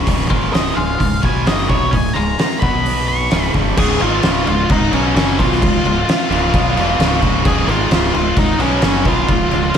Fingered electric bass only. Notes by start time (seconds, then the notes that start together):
0.07 C#1
0.30 G#1
0.53 C#1
0.76 C#1
1.00 C#1
1.23 B1
1.47 F#1
1.70 B1
1.93 C#1
2.16 C#1
2.39 muted fingered electric bass stroke
2.62 B1
3.32 C#1
3.55 G1
3.78 C#1
4.02 G#1
4.24 C#1
4.47 C#1
4.70 C#1
4.93 B1
5.16 F#1
5.39 B1
5.62 C#1
5.85 C#1
6.08 muted fingered electric bass stroke
6.30 C#1
6.54 B1
6.76 E1
6.99 C#1
7.45 C#1
7.67 G#1
7.90 C#1
8.15 C#1
8.36 C#1
8.59 B1
8.83 F#1
9.05 B1
9.29 C#1
9.52 C#1